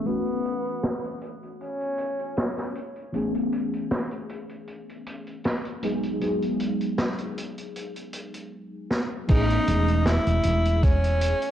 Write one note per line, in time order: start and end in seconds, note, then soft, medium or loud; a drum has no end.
0.05 1.94 E3 medium
0.05 1.94 A3 medium
0.05 1.34 B3 loud
0.05 1.94 B3 medium
0.05 1.95 C#4 medium
0.05 1.95 F#4 medium
0.05 closed hi-hat medium
0.27 closed hi-hat soft
0.45 closed hi-hat medium
0.65 closed hi-hat medium
0.83 snare loud
0.83 closed hi-hat medium
1.04 closed hi-hat soft
1.21 closed hi-hat medium
1.43 closed hi-hat medium
1.60 2.72 C#4 loud
1.60 closed hi-hat medium
1.81 closed hi-hat medium
1.98 closed hi-hat loud
2.19 closed hi-hat soft
2.37 snare loud
2.37 closed hi-hat medium
2.57 snare soft
2.57 closed hi-hat medium
2.75 closed hi-hat medium
2.96 closed hi-hat soft
3.12 5.78 E3 medium
3.12 5.79 A3 medium
3.12 5.79 B3 medium
3.12 5.79 C#4 medium
3.12 5.80 G#4 medium
3.12 closed hi-hat medium
3.35 closed hi-hat medium
3.53 closed hi-hat medium
3.74 closed hi-hat medium
3.91 snare loud
3.91 closed hi-hat medium
4.11 closed hi-hat medium
4.29 closed hi-hat medium
4.49 closed hi-hat soft
4.68 closed hi-hat medium
4.89 closed hi-hat medium
5.07 closed hi-hat medium
5.27 closed hi-hat soft
5.44 snare loud
5.44 closed hi-hat medium
5.65 closed hi-hat soft
5.82 6.17 F#3 medium
5.82 6.17 G#3 medium
5.82 6.17 B3 medium
5.82 6.18 D#4 medium
5.82 6.18 G#4 medium
5.82 closed hi-hat loud
6.03 closed hi-hat medium
6.20 8.09 F#3 medium
6.20 8.09 G#3 medium
6.20 8.10 B3 medium
6.20 8.10 D#4 medium
6.20 8.10 G#4 medium
6.20 closed hi-hat medium
6.42 closed hi-hat soft
6.60 closed hi-hat medium
6.81 closed hi-hat soft
6.98 snare loud
6.98 closed hi-hat medium
7.18 closed hi-hat soft
7.38 closed hi-hat medium
7.58 closed hi-hat medium
7.76 closed hi-hat medium
7.96 closed hi-hat soft
8.13 closed hi-hat medium
8.34 closed hi-hat medium
8.90 snare medium
9.28 9.57 A1 medium
9.28 11.51 E3 medium
9.28 11.51 A3 medium
9.28 11.51 B3 medium
9.28 11.51 C#4 medium
9.28 10.08 D#4 loud
9.28 11.51 G#4 loud
9.28 kick loud
9.28 closed hi-hat medium
9.28 crash medium
9.50 closed hi-hat medium
9.68 10.17 E1 loud
9.68 closed hi-hat loud
9.88 closed hi-hat medium
10.06 10.85 E4 loud
10.06 snare loud
10.06 closed hi-hat medium
10.27 10.39 E1 medium
10.27 closed hi-hat medium
10.43 11.32 E1 medium
10.43 closed hi-hat medium
10.65 closed hi-hat medium
10.83 11.51 C#4 loud
10.83 kick loud
10.83 closed hi-hat medium
11.04 closed hi-hat medium
11.21 closed hi-hat loud
11.42 closed hi-hat medium